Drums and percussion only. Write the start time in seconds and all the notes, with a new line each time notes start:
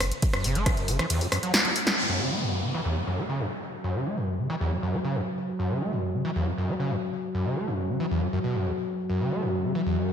0.00 cross-stick, open hi-hat
0.12 closed hi-hat
0.22 kick, closed hi-hat, ride
0.33 cross-stick, closed hi-hat
0.44 open hi-hat
0.55 closed hi-hat
0.66 kick, cross-stick, closed hi-hat, ride
0.77 closed hi-hat
0.88 open hi-hat
0.99 cross-stick, closed hi-hat
1.10 closed hi-hat, ride
1.21 open hi-hat
1.32 cross-stick, open hi-hat
1.43 closed hi-hat
1.54 snare, closed hi-hat, ride
1.65 closed hi-hat
1.76 open hi-hat
1.87 snare, closed hi-hat
1.98 crash